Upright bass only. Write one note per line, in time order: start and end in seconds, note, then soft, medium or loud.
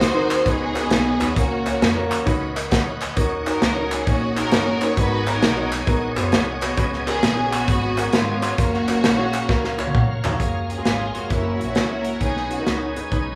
0.01 0.39 D#2 medium
0.46 0.84 C#2 loud
0.91 1.16 B1 medium
1.21 1.34 D#2 medium
1.36 1.75 C#2 loud
1.82 2.07 F2 medium
2.11 2.24 D#2 medium
2.27 2.65 C#2 loud
2.72 3.10 D2 medium
3.17 3.55 D#2 loud
3.62 4.00 C#2 medium
4.07 4.45 A#1 medium
4.52 4.91 G1 medium
4.97 5.42 G#1 medium
5.42 5.81 B1 loud
5.88 6.13 A#1 loud
6.17 6.31 F#1 medium
6.33 6.71 C2 medium
6.77 7.16 C#2 loud
7.23 7.62 A#1 medium
7.68 8.06 G#1 loud
8.13 8.52 G#1 medium
8.58 8.97 F#1 loud
9.04 9.42 A#1 medium
9.49 9.87 C#2 medium
9.95 10.33 F1 medium
10.40 10.78 F#1 medium
10.85 11.11 G#1 medium
11.15 11.28 F1 medium
11.30 11.56 F#1 medium
11.60 11.76 A#1 medium
11.76 12.15 C#2 medium
12.21 12.60 B1 medium
12.67 12.92 C#2 medium
12.96 13.10 D#2 medium
13.12 13.35 B1 medium